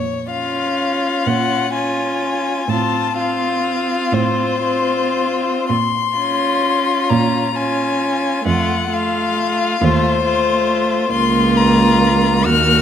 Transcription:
0, 0, Header, 1, 5, 480
1, 0, Start_track
1, 0, Key_signature, -5, "minor"
1, 0, Tempo, 955414
1, 1348, Time_signature, 6, 3, 24, 8
1, 1834, Tempo, 980392
1, 2314, Tempo, 1065719
1, 2794, Tempo, 952381
1, 3274, Tempo, 903614
1, 5194, Tempo, 872093
1, 6599, End_track
2, 0, Start_track
2, 0, Title_t, "Violin"
2, 0, Program_c, 0, 40
2, 0, Note_on_c, 0, 73, 48
2, 139, Note_off_c, 0, 73, 0
2, 157, Note_on_c, 0, 77, 48
2, 638, Note_on_c, 0, 78, 57
2, 646, Note_off_c, 0, 77, 0
2, 869, Note_off_c, 0, 78, 0
2, 872, Note_on_c, 0, 80, 47
2, 1351, Note_on_c, 0, 81, 47
2, 1359, Note_off_c, 0, 80, 0
2, 1588, Note_off_c, 0, 81, 0
2, 1591, Note_on_c, 0, 77, 51
2, 2070, Note_on_c, 0, 72, 55
2, 2077, Note_off_c, 0, 77, 0
2, 2791, Note_off_c, 0, 72, 0
2, 2794, Note_on_c, 0, 84, 60
2, 3511, Note_on_c, 0, 82, 51
2, 3519, Note_off_c, 0, 84, 0
2, 3759, Note_on_c, 0, 80, 54
2, 3767, Note_off_c, 0, 82, 0
2, 4235, Note_off_c, 0, 80, 0
2, 4238, Note_on_c, 0, 78, 52
2, 4486, Note_on_c, 0, 77, 53
2, 4494, Note_off_c, 0, 78, 0
2, 4967, Note_on_c, 0, 72, 66
2, 4975, Note_off_c, 0, 77, 0
2, 5666, Note_off_c, 0, 72, 0
2, 5669, Note_on_c, 0, 84, 65
2, 5912, Note_on_c, 0, 82, 63
2, 5921, Note_off_c, 0, 84, 0
2, 6397, Note_on_c, 0, 89, 78
2, 6406, Note_off_c, 0, 82, 0
2, 6599, Note_off_c, 0, 89, 0
2, 6599, End_track
3, 0, Start_track
3, 0, Title_t, "Violin"
3, 0, Program_c, 1, 40
3, 160, Note_on_c, 1, 65, 35
3, 861, Note_off_c, 1, 65, 0
3, 875, Note_on_c, 1, 65, 35
3, 1340, Note_off_c, 1, 65, 0
3, 1358, Note_on_c, 1, 65, 35
3, 1591, Note_off_c, 1, 65, 0
3, 1604, Note_on_c, 1, 65, 35
3, 2305, Note_off_c, 1, 65, 0
3, 2315, Note_on_c, 1, 65, 36
3, 2785, Note_off_c, 1, 65, 0
3, 3038, Note_on_c, 1, 65, 38
3, 3741, Note_off_c, 1, 65, 0
3, 3754, Note_on_c, 1, 65, 34
3, 4223, Note_off_c, 1, 65, 0
3, 4235, Note_on_c, 1, 65, 38
3, 4468, Note_off_c, 1, 65, 0
3, 4471, Note_on_c, 1, 65, 38
3, 4947, Note_off_c, 1, 65, 0
3, 4952, Note_on_c, 1, 65, 42
3, 5179, Note_off_c, 1, 65, 0
3, 5182, Note_on_c, 1, 65, 39
3, 5653, Note_off_c, 1, 65, 0
3, 5658, Note_on_c, 1, 65, 51
3, 6398, Note_on_c, 1, 66, 49
3, 6406, Note_off_c, 1, 65, 0
3, 6599, Note_off_c, 1, 66, 0
3, 6599, End_track
4, 0, Start_track
4, 0, Title_t, "Viola"
4, 0, Program_c, 2, 41
4, 154, Note_on_c, 2, 61, 31
4, 858, Note_off_c, 2, 61, 0
4, 871, Note_on_c, 2, 61, 30
4, 1338, Note_off_c, 2, 61, 0
4, 1351, Note_on_c, 2, 60, 34
4, 1585, Note_off_c, 2, 60, 0
4, 1588, Note_on_c, 2, 60, 34
4, 2298, Note_off_c, 2, 60, 0
4, 2309, Note_on_c, 2, 60, 30
4, 2782, Note_off_c, 2, 60, 0
4, 3037, Note_on_c, 2, 61, 34
4, 3741, Note_off_c, 2, 61, 0
4, 3761, Note_on_c, 2, 61, 33
4, 4223, Note_off_c, 2, 61, 0
4, 4226, Note_on_c, 2, 57, 36
4, 4465, Note_off_c, 2, 57, 0
4, 4469, Note_on_c, 2, 57, 37
4, 4946, Note_off_c, 2, 57, 0
4, 4959, Note_on_c, 2, 57, 37
4, 5188, Note_off_c, 2, 57, 0
4, 5192, Note_on_c, 2, 57, 36
4, 5658, Note_off_c, 2, 57, 0
4, 5663, Note_on_c, 2, 58, 46
4, 6372, Note_off_c, 2, 58, 0
4, 6394, Note_on_c, 2, 58, 52
4, 6599, Note_off_c, 2, 58, 0
4, 6599, End_track
5, 0, Start_track
5, 0, Title_t, "Cello"
5, 0, Program_c, 3, 42
5, 0, Note_on_c, 3, 46, 44
5, 545, Note_off_c, 3, 46, 0
5, 635, Note_on_c, 3, 46, 44
5, 1257, Note_off_c, 3, 46, 0
5, 1347, Note_on_c, 3, 45, 47
5, 1977, Note_off_c, 3, 45, 0
5, 2067, Note_on_c, 3, 45, 48
5, 2705, Note_off_c, 3, 45, 0
5, 2794, Note_on_c, 3, 46, 46
5, 3422, Note_off_c, 3, 46, 0
5, 3517, Note_on_c, 3, 46, 54
5, 4142, Note_off_c, 3, 46, 0
5, 4235, Note_on_c, 3, 41, 51
5, 4865, Note_off_c, 3, 41, 0
5, 4958, Note_on_c, 3, 39, 57
5, 5576, Note_off_c, 3, 39, 0
5, 5672, Note_on_c, 3, 37, 45
5, 6399, Note_on_c, 3, 39, 55
5, 6407, Note_off_c, 3, 37, 0
5, 6599, Note_off_c, 3, 39, 0
5, 6599, End_track
0, 0, End_of_file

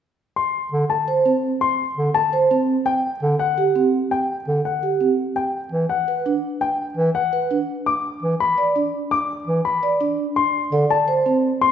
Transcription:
0, 0, Header, 1, 4, 480
1, 0, Start_track
1, 0, Tempo, 357143
1, 488, Time_signature, 7, 3, 24, 8
1, 15749, End_track
2, 0, Start_track
2, 0, Title_t, "Grand piano"
2, 0, Program_c, 0, 0
2, 489, Note_on_c, 0, 84, 64
2, 800, Note_off_c, 0, 84, 0
2, 1206, Note_on_c, 0, 81, 62
2, 1519, Note_off_c, 0, 81, 0
2, 2166, Note_on_c, 0, 84, 70
2, 2479, Note_off_c, 0, 84, 0
2, 2883, Note_on_c, 0, 81, 76
2, 3198, Note_off_c, 0, 81, 0
2, 3840, Note_on_c, 0, 79, 75
2, 4157, Note_off_c, 0, 79, 0
2, 4562, Note_on_c, 0, 78, 69
2, 4878, Note_off_c, 0, 78, 0
2, 5527, Note_on_c, 0, 79, 68
2, 5840, Note_off_c, 0, 79, 0
2, 6252, Note_on_c, 0, 78, 58
2, 6561, Note_off_c, 0, 78, 0
2, 7203, Note_on_c, 0, 79, 66
2, 7518, Note_off_c, 0, 79, 0
2, 7922, Note_on_c, 0, 78, 61
2, 8238, Note_off_c, 0, 78, 0
2, 8884, Note_on_c, 0, 79, 67
2, 9198, Note_off_c, 0, 79, 0
2, 9607, Note_on_c, 0, 78, 69
2, 9919, Note_off_c, 0, 78, 0
2, 10569, Note_on_c, 0, 86, 66
2, 10880, Note_off_c, 0, 86, 0
2, 11295, Note_on_c, 0, 83, 72
2, 11602, Note_off_c, 0, 83, 0
2, 12248, Note_on_c, 0, 86, 70
2, 12560, Note_off_c, 0, 86, 0
2, 12969, Note_on_c, 0, 83, 65
2, 13280, Note_off_c, 0, 83, 0
2, 13928, Note_on_c, 0, 84, 71
2, 14240, Note_off_c, 0, 84, 0
2, 14656, Note_on_c, 0, 81, 74
2, 14963, Note_off_c, 0, 81, 0
2, 15610, Note_on_c, 0, 84, 82
2, 15749, Note_off_c, 0, 84, 0
2, 15749, End_track
3, 0, Start_track
3, 0, Title_t, "Vibraphone"
3, 0, Program_c, 1, 11
3, 1449, Note_on_c, 1, 72, 50
3, 1687, Note_on_c, 1, 60, 57
3, 1760, Note_off_c, 1, 72, 0
3, 1999, Note_off_c, 1, 60, 0
3, 3130, Note_on_c, 1, 72, 60
3, 3374, Note_on_c, 1, 60, 59
3, 3441, Note_off_c, 1, 72, 0
3, 3682, Note_off_c, 1, 60, 0
3, 4808, Note_on_c, 1, 67, 55
3, 5047, Note_on_c, 1, 60, 52
3, 5120, Note_off_c, 1, 67, 0
3, 5359, Note_off_c, 1, 60, 0
3, 6490, Note_on_c, 1, 67, 47
3, 6727, Note_on_c, 1, 60, 48
3, 6801, Note_off_c, 1, 67, 0
3, 7039, Note_off_c, 1, 60, 0
3, 8172, Note_on_c, 1, 71, 47
3, 8411, Note_on_c, 1, 62, 56
3, 8481, Note_off_c, 1, 71, 0
3, 8721, Note_off_c, 1, 62, 0
3, 9850, Note_on_c, 1, 71, 51
3, 10089, Note_on_c, 1, 62, 56
3, 10160, Note_off_c, 1, 71, 0
3, 10400, Note_off_c, 1, 62, 0
3, 11527, Note_on_c, 1, 74, 53
3, 11769, Note_on_c, 1, 62, 54
3, 11840, Note_off_c, 1, 74, 0
3, 12080, Note_off_c, 1, 62, 0
3, 13210, Note_on_c, 1, 74, 58
3, 13447, Note_on_c, 1, 62, 62
3, 13521, Note_off_c, 1, 74, 0
3, 13760, Note_off_c, 1, 62, 0
3, 14412, Note_on_c, 1, 74, 56
3, 14721, Note_off_c, 1, 74, 0
3, 14889, Note_on_c, 1, 72, 55
3, 15132, Note_on_c, 1, 60, 56
3, 15200, Note_off_c, 1, 72, 0
3, 15441, Note_off_c, 1, 60, 0
3, 15749, End_track
4, 0, Start_track
4, 0, Title_t, "Bass clarinet"
4, 0, Program_c, 2, 71
4, 966, Note_on_c, 2, 50, 53
4, 1147, Note_off_c, 2, 50, 0
4, 2650, Note_on_c, 2, 50, 53
4, 2829, Note_off_c, 2, 50, 0
4, 4331, Note_on_c, 2, 50, 59
4, 4510, Note_off_c, 2, 50, 0
4, 6013, Note_on_c, 2, 50, 52
4, 6191, Note_off_c, 2, 50, 0
4, 7690, Note_on_c, 2, 52, 53
4, 7870, Note_off_c, 2, 52, 0
4, 9370, Note_on_c, 2, 52, 58
4, 9549, Note_off_c, 2, 52, 0
4, 11053, Note_on_c, 2, 52, 55
4, 11231, Note_off_c, 2, 52, 0
4, 12730, Note_on_c, 2, 52, 55
4, 12909, Note_off_c, 2, 52, 0
4, 14410, Note_on_c, 2, 50, 58
4, 14589, Note_off_c, 2, 50, 0
4, 15749, End_track
0, 0, End_of_file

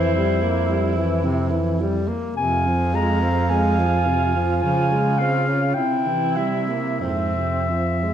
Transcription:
0, 0, Header, 1, 5, 480
1, 0, Start_track
1, 0, Key_signature, -4, "minor"
1, 0, Tempo, 1123596
1, 1014, Time_signature, 4, 2, 24, 8
1, 2459, Tempo, 1260504
1, 2939, Tempo, 1366743
1, 3332, End_track
2, 0, Start_track
2, 0, Title_t, "Clarinet"
2, 0, Program_c, 0, 71
2, 0, Note_on_c, 0, 72, 60
2, 748, Note_off_c, 0, 72, 0
2, 1012, Note_on_c, 0, 80, 73
2, 1261, Note_on_c, 0, 82, 69
2, 1268, Note_off_c, 0, 80, 0
2, 1493, Note_on_c, 0, 80, 70
2, 1500, Note_off_c, 0, 82, 0
2, 1969, Note_off_c, 0, 80, 0
2, 1972, Note_on_c, 0, 80, 64
2, 2215, Note_on_c, 0, 77, 60
2, 2221, Note_off_c, 0, 80, 0
2, 2452, Note_on_c, 0, 79, 57
2, 2458, Note_off_c, 0, 77, 0
2, 2690, Note_on_c, 0, 76, 51
2, 2695, Note_off_c, 0, 79, 0
2, 2933, Note_off_c, 0, 76, 0
2, 2935, Note_on_c, 0, 76, 57
2, 3332, Note_off_c, 0, 76, 0
2, 3332, End_track
3, 0, Start_track
3, 0, Title_t, "Alto saxophone"
3, 0, Program_c, 1, 65
3, 0, Note_on_c, 1, 64, 51
3, 897, Note_off_c, 1, 64, 0
3, 1024, Note_on_c, 1, 65, 51
3, 2448, Note_off_c, 1, 65, 0
3, 2459, Note_on_c, 1, 64, 42
3, 2940, Note_on_c, 1, 60, 36
3, 2946, Note_off_c, 1, 64, 0
3, 3332, Note_off_c, 1, 60, 0
3, 3332, End_track
4, 0, Start_track
4, 0, Title_t, "Tenor saxophone"
4, 0, Program_c, 2, 66
4, 0, Note_on_c, 2, 52, 45
4, 59, Note_off_c, 2, 52, 0
4, 63, Note_on_c, 2, 55, 49
4, 182, Note_on_c, 2, 58, 45
4, 188, Note_off_c, 2, 55, 0
4, 298, Note_on_c, 2, 55, 42
4, 304, Note_off_c, 2, 58, 0
4, 412, Note_on_c, 2, 52, 45
4, 419, Note_off_c, 2, 55, 0
4, 530, Note_on_c, 2, 48, 48
4, 536, Note_off_c, 2, 52, 0
4, 645, Note_on_c, 2, 52, 45
4, 652, Note_off_c, 2, 48, 0
4, 770, Note_on_c, 2, 55, 45
4, 776, Note_off_c, 2, 52, 0
4, 888, Note_on_c, 2, 58, 39
4, 894, Note_off_c, 2, 55, 0
4, 1007, Note_off_c, 2, 58, 0
4, 1010, Note_on_c, 2, 48, 44
4, 1140, Note_on_c, 2, 53, 46
4, 1147, Note_off_c, 2, 48, 0
4, 1257, Note_on_c, 2, 56, 44
4, 1263, Note_off_c, 2, 53, 0
4, 1379, Note_on_c, 2, 60, 42
4, 1386, Note_off_c, 2, 56, 0
4, 1499, Note_on_c, 2, 56, 44
4, 1505, Note_off_c, 2, 60, 0
4, 1619, Note_on_c, 2, 53, 44
4, 1625, Note_off_c, 2, 56, 0
4, 1736, Note_on_c, 2, 48, 38
4, 1743, Note_off_c, 2, 53, 0
4, 1860, Note_on_c, 2, 53, 44
4, 1867, Note_off_c, 2, 48, 0
4, 1976, Note_off_c, 2, 53, 0
4, 1980, Note_on_c, 2, 53, 46
4, 2102, Note_on_c, 2, 56, 39
4, 2108, Note_off_c, 2, 53, 0
4, 2224, Note_on_c, 2, 60, 41
4, 2230, Note_off_c, 2, 56, 0
4, 2341, Note_on_c, 2, 61, 36
4, 2347, Note_off_c, 2, 60, 0
4, 2461, Note_off_c, 2, 61, 0
4, 2463, Note_on_c, 2, 48, 38
4, 2577, Note_on_c, 2, 52, 38
4, 2583, Note_off_c, 2, 48, 0
4, 2692, Note_on_c, 2, 55, 34
4, 2698, Note_off_c, 2, 52, 0
4, 2812, Note_on_c, 2, 58, 30
4, 2818, Note_off_c, 2, 55, 0
4, 2935, Note_off_c, 2, 58, 0
4, 2938, Note_on_c, 2, 44, 32
4, 3058, Note_on_c, 2, 48, 31
4, 3063, Note_off_c, 2, 44, 0
4, 3178, Note_on_c, 2, 53, 30
4, 3183, Note_off_c, 2, 48, 0
4, 3296, Note_on_c, 2, 56, 29
4, 3301, Note_off_c, 2, 53, 0
4, 3332, Note_off_c, 2, 56, 0
4, 3332, End_track
5, 0, Start_track
5, 0, Title_t, "Baritone saxophone"
5, 0, Program_c, 3, 67
5, 0, Note_on_c, 3, 41, 52
5, 882, Note_off_c, 3, 41, 0
5, 1011, Note_on_c, 3, 41, 52
5, 1973, Note_on_c, 3, 49, 47
5, 1979, Note_off_c, 3, 41, 0
5, 2454, Note_off_c, 3, 49, 0
5, 2456, Note_on_c, 3, 48, 40
5, 2935, Note_on_c, 3, 41, 36
5, 2941, Note_off_c, 3, 48, 0
5, 3332, Note_off_c, 3, 41, 0
5, 3332, End_track
0, 0, End_of_file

